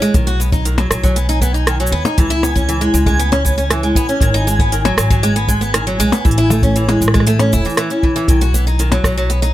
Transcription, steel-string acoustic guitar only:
0.02 0.13 G#3 loud
0.14 0.26 D#3 medium
0.27 0.38 F#4 loud
0.40 0.51 B3 medium
0.52 0.64 D#4 medium
0.65 0.77 D#3 medium
0.78 0.89 F#3 medium
0.91 1.02 F#3 medium
1.03 1.15 F#3 medium
1.16 1.28 B3 medium
1.29 1.40 D#4 medium
1.42 1.53 B3 medium
1.54 1.66 D#4 medium
1.67 1.79 D#3 medium
1.80 1.91 F#3 medium
1.92 2.04 B3 loud
2.05 2.17 D#4 medium
2.18 2.29 E3 medium
2.30 2.42 E4 loud
2.43 2.55 B3 medium
2.56 2.67 C#4 medium
2.69 2.81 E3 medium
2.81 2.93 G#3 medium
2.94 3.05 G#3 medium
3.06 3.19 G#3 medium
3.19 3.31 B3 medium
3.32 3.44 C#4 loud
3.45 3.56 B3 medium
3.58 3.69 C#4 medium
3.71 3.82 E3 medium
3.83 3.95 G#3 medium
3.96 4.07 B3 loud
4.09 4.20 C#4 medium
4.22 4.33 D#3 medium
4.34 4.45 D#4 loud
4.47 4.58 G#3 medium
4.60 4.71 B3 medium
4.72 4.84 D#3 medium
4.85 4.97 F#3 medium
4.98 5.09 F#3 medium
5.10 5.22 F#3 medium
5.23 5.34 G#3 medium
5.36 5.47 B3 medium
5.48 5.60 G#3 medium
5.61 5.72 B3 medium
5.74 5.85 D#3 medium
5.87 5.98 F#3 medium
6.00 6.11 G#3 loud
6.12 6.24 B3 medium
6.25 6.36 E3 medium
6.38 6.49 E4 loud
6.50 6.62 A3 medium
6.63 6.74 C#4 medium
6.76 6.88 E3 medium
6.89 7.00 G#3 medium
7.02 7.13 G#3 medium
7.14 7.26 G#3 medium
7.27 7.38 A3 medium
7.40 7.51 C#4 loud
7.53 7.64 E4 loud
7.65 7.76 E3 medium
7.78 7.89 E3 loud
7.91 8.02 C#4 medium
8.03 8.14 E3 medium
8.16 8.27 E3 medium
8.29 8.40 D#3 medium
8.41 8.53 F#4 loud
8.54 8.65 B3 medium
8.67 8.78 D#4 medium
8.80 8.91 D#3 medium
8.92 9.04 F#3 medium
9.05 9.16 F#3 medium
9.17 9.29 F#3 medium
9.30 9.41 B3 medium
9.42 9.54 D#4 loud

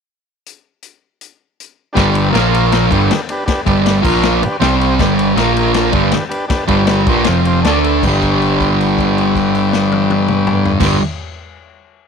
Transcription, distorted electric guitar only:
1.95 2.33 G2 medium
1.95 2.32 D3 loud
1.95 2.33 G3 loud
2.33 2.89 A#2 medium
2.33 2.90 F3 medium
2.33 2.90 A#3 loud
2.90 3.09 G2 medium
2.90 3.09 D3 medium
2.90 3.09 G3 medium
3.66 4.04 G2 loud
3.66 4.02 D3 medium
3.66 4.02 G3 medium
4.02 4.41 A#2 loud
4.02 4.41 F3 loud
4.02 4.41 A#3 medium
4.44 muted distorted electric guitar stroke medium
4.61 4.99 C3 medium
4.61 4.99 G3 loud
4.61 4.99 C4 loud
5.00 5.37 G2 loud
5.00 5.35 D3 loud
5.00 5.36 G3 loud
5.36 5.93 A#2 loud
5.36 5.93 F3 medium
5.36 5.94 A#3 medium
5.93 6.12 G2 medium
5.93 6.12 D3 medium
5.93 6.12 G3 medium
6.68 7.06 G2 medium
6.68 7.07 D3 loud
6.68 7.07 G3 loud
7.09 7.27 A#2 loud
7.09 7.27 F3 loud
7.09 7.27 A#3 loud
7.28 7.64 F2 medium
7.28 7.65 C3 medium
7.28 7.65 F3 medium
7.66 8.03 D3 medium
7.66 8.03 A3 medium
7.66 8.03 D4 loud
8.04 10.79 G2 loud
8.04 10.81 D3 loud
8.04 10.83 G3 loud
10.80 10.97 G2 loud
10.80 10.98 D3 loud
10.80 10.99 G3 medium

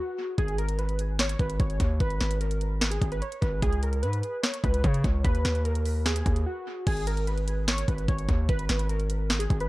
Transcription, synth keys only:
0.00 0.36 F#4 medium
0.38 0.57 G#4 loud
0.58 0.77 A#4 medium
0.79 1.17 B4 medium
1.20 1.38 C#5 medium
1.39 1.58 B4 medium
1.60 1.98 C#5 medium
2.01 2.39 B4 loud
2.41 2.88 A#4 medium
2.91 3.10 G#4 medium
3.12 3.21 B4 medium
3.22 3.40 C#5 medium
3.41 3.60 B4 medium
3.62 3.81 G#4 loud
3.83 4.02 A#4 medium
4.03 4.41 B4 medium
4.43 4.62 C#5 medium
4.64 4.82 B4 medium
4.84 5.22 C#5 medium
5.24 5.62 B4 loud
5.65 6.03 A#4 medium
6.06 6.44 G#4 medium
6.46 6.84 F#4 medium
6.87 7.06 G#4 loud
7.07 7.26 A#4 medium
7.27 7.65 B4 medium
7.69 7.87 C#5 medium
7.88 8.07 B4 medium
8.08 8.46 C#5 medium
8.49 8.87 B4 loud
8.89 9.37 A#4 medium
9.39 9.58 G#4 medium
9.61 9.69 B4 medium

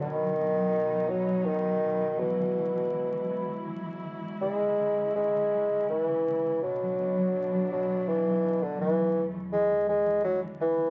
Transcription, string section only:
0.00 4.39 F#3 medium
0.00 2.17 D#4 medium
0.04 2.18 B2 medium
2.20 6.60 G#3 medium
2.20 6.60 E4 medium
4.43 6.62 C#3 medium
6.65 8.79 B2 medium
6.65 8.79 F#3 medium
6.65 8.79 D4 medium
8.79 10.90 E2 medium
8.79 9.51 C#3 medium
8.79 9.52 E3 medium
8.79 9.52 A3 medium
9.52 10.90 D3 medium
9.52 10.90 G#3 medium

